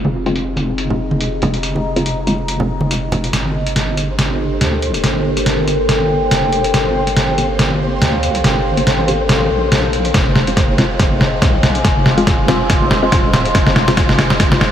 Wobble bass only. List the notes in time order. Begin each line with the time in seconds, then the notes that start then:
Already playing: F1
3.33 G1
4.61 D2
5.04 G1
6.31 F1
6.74 G1
8.01 D2
8.44 G1
8.87 G#1
9.51 A#1
10.14 F1
11.42 C2
11.85 F1
13.12 D#1
13.55 F1